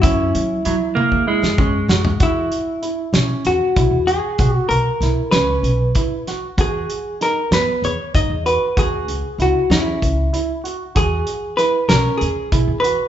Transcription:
0.02 upright bass F#2, grand piano C#4, hollow-body jazz guitar E4, kick, closed hi-hat
0.35 upright bass F#3, closed hi-hat
0.65 upright bass F#3, clean electric guitar F#3, grand piano E4, closed hi-hat
0.95 clean electric guitar A#3, high tom
1.12 upright bass E2, kick
1.27 clean electric guitar G#3, grand piano E4
1.42 upright bass F#2, snare
1.58 grand piano C#4, kick
1.88 upright bass F#2, grand piano F#4, snare
2.05 floor tom
2.20 upright bass E2, hollow-body jazz guitar E4, grand piano F#4, kick, closed hi-hat
2.52 closed hi-hat
2.82 grand piano E4, closed hi-hat
3.13 upright bass B1, grand piano C#4, snare, closed hi-hat
3.45 upright bass E2, hollow-body jazz guitar F#4, closed hi-hat
3.76 upright bass B1, grand piano E4, kick, closed hi-hat
3.91 upright bass E2
4.07 grand piano F#4, hollow-body jazz guitar G#4, closed hi-hat
4.38 upright bass B1, grand piano F#4, kick, closed hi-hat
4.57 hollow-body jazz guitar F#4
4.69 upright bass B1, hollow-body jazz guitar A#4, closed hi-hat
5.01 upright bass B1, grand piano E4, snare, closed hi-hat
5.31 upright bass C#2, grand piano C#4, hollow-body jazz guitar B4, snare, closed hi-hat
5.63 upright bass B1, closed hi-hat
5.95 grand piano E4, kick, closed hi-hat
6.27 grand piano F#4, snare, closed hi-hat
6.58 upright bass E2, grand piano F#4, hollow-body jazz guitar G#4, kick, closed hi-hat
6.90 closed hi-hat
7.21 grand piano D#4, hollow-body jazz guitar A#4, snare, closed hi-hat
7.51 upright bass F#2, grand piano B3, hollow-body jazz guitar B4, snare, closed hi-hat
7.82 upright bass E2, hollow-body jazz guitar C#5, closed hi-hat
8.14 upright bass F#2, grand piano D#4, hollow-body jazz guitar D#5, kick, closed hi-hat
8.30 upright bass E2
8.46 grand piano F#4, hollow-body jazz guitar B4, closed hi-hat
8.77 upright bass E2, grand piano F#4, hollow-body jazz guitar G#4, kick, closed hi-hat
9.07 upright bass C#2, closed hi-hat
9.38 upright bass C#2, grand piano E4, hollow-body jazz guitar F#4, closed hi-hat
9.70 upright bass E2, grand piano C#4, hollow-body jazz guitar E4, snare, closed hi-hat
10.02 upright bass C#2, kick, closed hi-hat
10.33 grand piano E4, closed hi-hat
10.64 grand piano F#4, closed hi-hat
10.95 upright bass E2, grand piano F#4, hollow-body jazz guitar G#4, kick, closed hi-hat
11.27 closed hi-hat
11.57 grand piano E4, hollow-body jazz guitar B4, snare, closed hi-hat
11.89 upright bass B1, grand piano C#4, hollow-body jazz guitar A#4, snare, closed hi-hat
12.18 upright bass E2, hollow-body jazz guitar G#4, closed hi-hat
12.52 upright bass B1, grand piano E4, kick, closed hi-hat
12.67 upright bass E2
12.80 hollow-body jazz guitar B4
12.84 grand piano F#4, closed hi-hat

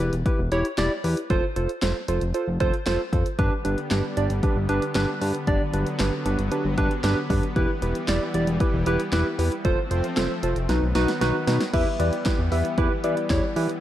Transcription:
0.00 analog synth bass E1, synth keys E4 G4 B4, closed hi-hat
0.13 analog synth bass E1, closed hi-hat
0.26 synth keys E4 G4 B4, kick, closed hi-hat
0.39 analog synth bass E1
0.52 analog synth bass E1, synth keys E4 G4 C#5, closed hi-hat
0.65 closed hi-hat
0.78 analog synth bass E1, synth keys E4 G4 D5, snare, clap, closed hi-hat
1.04 analog synth bass E2, synth keys E4 G4 B4, open hi-hat
1.17 closed hi-hat
1.30 analog synth bass F1, synth keys F4 A4 C5, kick, closed hi-hat
1.56 analog synth bass F1, synth keys F4 A4 C5, closed hi-hat
1.69 closed hi-hat
1.82 analog synth bass F1, synth keys F4 A4 C5, snare, clap, closed hi-hat
2.08 analog synth bass F1, synth keys F4 A4 C5, closed hi-hat
2.21 analog synth bass F1, closed hi-hat
2.34 synth keys F4 A4 C5, closed hi-hat
2.48 analog synth bass F1
2.60 analog synth bass F1, synth keys F4 A4 C5, kick, closed hi-hat
2.74 closed hi-hat
2.86 analog synth bass F1, synth keys F4 A4 C5, snare, clap, closed hi-hat
3.12 analog synth bass F2, synth keys F4 A4 C5, kick, closed hi-hat
3.26 closed hi-hat
3.39 analog synth bass G1, analog synth pad D3 G3 B3, synth keys D4 G4 B4, kick, closed hi-hat
3.65 analog synth bass G1, synth keys D4 G4 B4, closed hi-hat
3.78 closed hi-hat
3.91 analog synth bass G1, synth keys D4 G4 B4, snare, clap, closed hi-hat
4.17 analog synth bass G1, synth keys D4 G4 D5, closed hi-hat
4.30 analog synth bass G1, closed hi-hat
4.43 synth keys D4 G4 B4, kick, closed hi-hat
4.56 analog synth bass G1
4.69 analog synth bass G1, synth keys D4 G4 B4, closed hi-hat
4.82 closed hi-hat
4.95 analog synth bass G1, synth keys D4 G4 B4, snare, clap, closed hi-hat
5.21 analog synth bass G2, synth keys D4 G4 B4, open hi-hat
5.35 closed hi-hat
5.47 analog synth bass G1, analog synth pad F#3, synth keys D4 G4 D5, kick, closed hi-hat
5.74 analog synth bass G1, synth keys D4 G4 B4, closed hi-hat
5.87 closed hi-hat
5.99 analog synth bass G1, synth keys D4 G4 B4, snare, clap, closed hi-hat
6.26 analog synth bass G1, synth keys D4 G4 B4, closed hi-hat
6.39 analog synth bass G1, closed hi-hat
6.52 synth keys D4 G4 B4, closed hi-hat
6.65 analog synth bass G1
6.78 analog synth bass G1, synth keys D4 G4 B4, kick, closed hi-hat
6.91 closed hi-hat
7.04 analog synth bass G1, synth keys D4 G4 B4, snare, clap, closed hi-hat
7.30 analog synth bass G2, synth keys D4 G4 B4, kick, open hi-hat
7.43 closed hi-hat
7.56 analog synth bass E1, analog synth pad E3 G3, synth keys E4 G4 B4, kick, closed hi-hat
7.82 analog synth bass E1, synth keys E4 G4 B4, closed hi-hat
7.95 closed hi-hat
8.08 analog synth bass E1, synth keys E4 G4 D5, snare, clap, closed hi-hat
8.34 analog synth bass E1, synth keys E4 G4 D5, closed hi-hat
8.47 analog synth bass E1, closed hi-hat
8.60 synth keys E4 G4 B4, kick, closed hi-hat
8.73 analog synth bass E1
8.86 analog synth bass E1, synth keys E4 G4 B4, closed hi-hat
9.00 closed hi-hat
9.12 analog synth bass E1, synth keys E4 G4 B4, snare, clap, closed hi-hat
9.39 analog synth bass E2, synth keys E4 G4 B4, open hi-hat
9.52 closed hi-hat
9.65 analog synth bass F1, analog synth pad F3 A3 C4, synth keys F4 A4 C5, kick, closed hi-hat
9.91 analog synth bass F1, synth keys F4 A4 C5, closed hi-hat
10.04 closed hi-hat
10.17 analog synth bass F1, synth keys F4 A4 C5, snare, clap, closed hi-hat
10.43 analog synth bass F1, synth keys F4 A4 C5, closed hi-hat
10.56 analog synth bass F1, closed hi-hat
10.69 analog synth bass B1, analog synth pad D#3 F#3 B3, synth keys D#4 F#4 B4, snare, closed hi-hat
10.82 analog synth bass B1
10.95 analog synth bass B1, synth keys D#4 F#4 B4, snare, closed hi-hat
11.08 snare, closed hi-hat
11.21 analog synth bass B1, synth keys D#4 F#4 B4, snare, closed hi-hat
11.47 analog synth bass B2, synth keys D#4 F#4 B4, snare, closed hi-hat
11.60 snare, closed hi-hat
11.73 analog synth bass E2, analog synth pad E3 G3 B3, synth keys E4 G4 B4, synth pluck E5, kick, closed hi-hat, crash
11.99 analog synth bass E2, synth keys E4 G4 B4, synth pluck D5, closed hi-hat
12.13 closed hi-hat
12.26 synth keys E4 G4 B4, kick, snare, clap, closed hi-hat
12.39 analog synth bass E2
12.52 analog synth bass E2, synth keys E4 G4 B4, synth pluck E5, open hi-hat
12.65 closed hi-hat
12.78 analog synth bass E2, synth keys E4 G4 B4, kick, closed hi-hat
13.04 analog synth bass E3, synth keys E4 G4 B4, synth pluck D5, closed hi-hat
13.17 closed hi-hat
13.30 analog synth bass E2, synth keys E4 G4 C#5, kick, snare, clap, closed hi-hat
13.56 analog synth bass E3, synth keys E4 G4 B4, open hi-hat
13.69 closed hi-hat

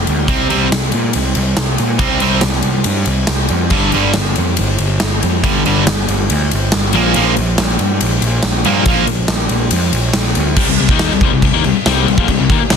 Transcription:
0.07 picked electric bass D2, ride
0.28 picked electric bass C2, overdriven electric guitar C3 G3 C4, kick, ride
0.49 picked electric bass C2, overdriven electric guitar C3 G3 C4, ride
0.72 picked electric bass C2, snare, ride
0.82 snare
0.92 picked electric bass A#2, ride
1.13 picked electric bass C2, ride
1.35 picked electric bass C2, ride
1.57 picked electric bass C2, snare, ride
1.78 picked electric bass A#2, ride
1.99 picked electric bass C2, overdriven electric guitar C3 G3 C4, kick, ride
2.20 picked electric bass C2, overdriven electric guitar C3 G3 C4, ride
2.41 picked electric bass C2, snare, ride
2.53 snare
2.62 picked electric bass C2, ride
2.84 picked electric bass G2, ride
3.06 picked electric bass C2, ride
3.27 picked electric bass C2, snare, ride
3.49 picked electric bass F2, ride
3.70 picked electric bass G1, overdriven electric guitar G2 D3 G3, kick, crash
3.92 picked electric bass G1, overdriven electric guitar G2 D3 G3, ride
4.14 picked electric bass G1, snare, ride
4.25 snare
4.36 picked electric bass F2, ride
4.57 picked electric bass G1, ride
4.78 picked electric bass G1, ride
5.00 picked electric bass G1, snare, ride
5.23 picked electric bass F2, ride
5.44 picked electric bass G1, overdriven electric guitar G2 D3 G3, kick, ride
5.66 picked electric bass G1, overdriven electric guitar G2 D3 G3, ride
5.87 picked electric bass G1, snare, ride
6.08 picked electric bass G1, ride
6.30 picked electric bass D2, ride
6.51 picked electric bass G1, ride
6.72 picked electric bass G1, snare, ride
6.93 picked electric bass A#1, overdriven electric guitar A#2 F3 A#3, ride
7.14 picked electric bass A#1, overdriven electric guitar A#2 F3 A#3, ride
7.37 picked electric bass A#1, ride
7.58 picked electric bass A#1, snare, ride
7.69 snare
7.79 picked electric bass G2, ride
8.01 picked electric bass A#1, ride
8.22 picked electric bass A#1, ride
8.43 picked electric bass A#1, snare, ride
8.65 picked electric bass G2, overdriven electric guitar A#2 F3 A#3, ride
8.86 picked electric bass A#1, overdriven electric guitar A#2 F3 A#3, kick, ride
9.07 picked electric bass A#1, ride
9.28 picked electric bass A#1, snare, ride
9.40 snare
9.49 picked electric bass A#1, ride
9.71 picked electric bass F2, ride
9.92 picked electric bass A#1, ride
10.13 picked electric bass A#1, snare, ride
10.35 picked electric bass D2, ride
10.56 picked electric bass C2, overdriven electric guitar C3 G3, kick, crash
10.69 picked electric bass C2, overdriven electric guitar C3 G3
10.78 picked electric bass C2, overdriven electric guitar C3 G3, crash
10.89 picked electric bass D#2, overdriven electric guitar D#3 A#3 D#4, kick
10.99 snare, crash
11.11 picked electric bass C2, overdriven electric guitar C3 G3, snare
11.21 picked electric bass C2, overdriven electric guitar C3 G3, kick, crash
11.32 picked electric bass C2, overdriven electric guitar C3 G3
11.42 picked electric bass C2, overdriven electric guitar C3 G3, kick, crash
11.53 picked electric bass D#2, overdriven electric guitar D#3 A#3
11.64 picked electric bass C2, overdriven electric guitar C3 G3, crash
11.75 muted picked electric bass stroke, muted overdriven electric guitar stroke
11.86 picked electric bass C2, overdriven electric guitar C3 G3 C4, snare, crash
12.07 picked electric bass C2, overdriven electric guitar C3 G3, crash
12.18 picked electric bass A#1, overdriven electric guitar A#2 F3, kick
12.28 picked electric bass C2, overdriven electric guitar C3 G3, kick, crash
12.40 picked electric bass C2, overdriven electric guitar C3 G3
12.49 picked electric bass D#2, overdriven electric guitar D#3 A#3, kick, crash
12.61 muted overdriven electric guitar stroke, muted picked electric bass stroke
12.70 picked electric bass C2, overdriven electric guitar C3 G3, snare, crash

